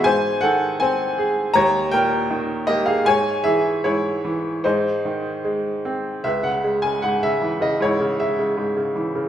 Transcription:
<<
  \new Staff \with { instrumentName = "Upright piano" } { \time 4/4 \key gis \phrygian \tempo 4 = 78 << { gis''8 fis''8 gis''4 ais''8 g''4 dis''16 eis''16 | gis''8 e''8 cis''4 bis'4. r8 | \key cis \minor e''16 fis''8 gis''16 fis''16 e''8 dis''16 cis''8 e''4 r8 | } \\ { bis'8 a'8 bis'4 cis''8 ais'4 g'16 gis'16 | cis''8 gis'8 e'4 dis'4. r8 | b'2 e'2 | } >> }
  \new Staff \with { instrumentName = "Upright piano" } { \clef bass \time 4/4 \key gis \phrygian gis,8 dis8 bis8 gis'8 dis,8 ais,8 dis8 ais8 | gis,8 e8 gis,8 e8 gis,8 dis8 gis8 bis8 | \key cis \minor cis,16 cis16 gis16 cis16 gis,16 cis16 e16 cis16 gis,16 cis16 gis16 cis16 gis,16 cis16 e16 cis16 | }
>>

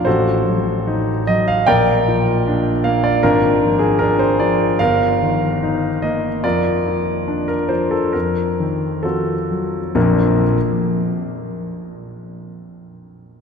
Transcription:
<<
  \new Staff \with { instrumentName = "Grand piano" } { \time 4/4 \key bes \major \tempo 4 = 72 <fis' a' c''>4. ees''16 f''16 <bes' d'' g''>4. f''16 d''16 | <d' f' bes'>8. aes'16 bes'16 c''16 d''8 <bes' f''>4. ees''8 | <f' bes' d''>4~ <f' bes' d''>16 bes'16 c''16 a'16 bes'4 <f' ges' a'>4 | <bes,, f, f bes d' f' bes'>8 r2. r8 | }
  \new Staff \with { instrumentName = "Grand piano" } { \clef bass \time 4/4 \key bes \major a,,8 fis8 ees'8 fis8 bes,,8 f8 d'8 bes8 | aes,,8 f8 d'8 f8 g,,8 ees8 ees'8 bes8 | f,8 f8 d'8 f8 f,8 ees8 c'8 ges8 | r1 | }
>>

